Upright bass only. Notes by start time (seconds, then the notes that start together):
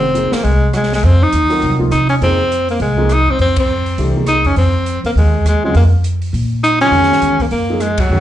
Already playing: F1
0.32 muted upright bass stroke
0.44 C2
1.03 F2
1.33 D#2
1.63 C2
1.93 C3
2.21 F2
2.80 C2
3.27 F#2
3.39 F2
3.98 C2
4.45 E2
4.56 F2
5.04 E2
5.16 D#2
5.45 D#2
5.75 F2
6.33 A#2
6.91 F2
7.21 E2
7.51 F#2
8.10 F2